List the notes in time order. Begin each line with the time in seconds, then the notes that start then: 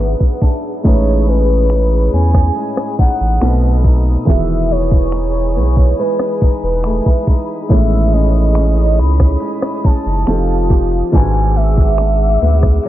Already playing: G#1 G#2 F#3 G#3 D4 F#4 G#4 B4 E5 F#5
0.00 B3
0.20 kick
0.42 D4, kick
0.83 A1 A2 G#3 C#4 D#4 B4 C#5 B5 D#6, kick
1.27 C#4 B4
1.70 D#4, finger snap
2.13 E2 C#4 G#5
2.34 kick, cross-stick
2.56 G#3
2.77 cross-stick
2.99 A1 D#4 F#5, kick
3.20 A1
3.40 B1 B2 A3 C4 D#4 A4 B4 B5, finger snap
3.84 D#4, kick
4.25 E1 D#3 E3 G#3 B3 F#4 G#4 E5 G#5, kick
4.70 B3 C#5
4.91 kick
5.12 D#4, finger snap
5.56 B1 B3
5.77 kick
5.99 G#3 B4
6.19 cross-stick
6.42 E1 D#4, kick
6.63 E1 B4
6.84 A3, finger snap
7.06 B3, kick
7.27 D#4, kick
7.68 A1 A2 D#3 E3 G#3 B3 C#4 C#5 E5 D#6, kick, closed hi-hat
7.91 closed hi-hat
8.13 C#4 D#5, closed hi-hat
8.35 closed hi-hat
8.55 C#4, finger snap, closed hi-hat
8.76 D#4, closed hi-hat
8.99 C#2 C#4 B5, closed hi-hat
9.20 kick, cross-stick, closed hi-hat
9.40 G#3, closed hi-hat
9.62 cross-stick, closed hi-hat
9.84 F#1 C#4 A5, kick, closed hi-hat
10.06 F#1 D#4
10.27 F1 F3 C4 D#4 G4 A4 F5 A5, finger snap, closed hi-hat
10.48 closed hi-hat
10.70 G4, kick
10.92 closed hi-hat
11.11 G#1 G#2 G#3 D4 F#4 G#4 B4 F#5 G#5 D6 E6, kick, closed hi-hat
11.34 closed hi-hat
11.56 B3 E5, closed hi-hat
11.77 kick, closed hi-hat
11.98 D4, finger snap, closed hi-hat
12.20 closed hi-hat
12.42 D2 B3, closed hi-hat
12.63 kick, cross-stick, closed hi-hat
12.84 F#3 D5, closed hi-hat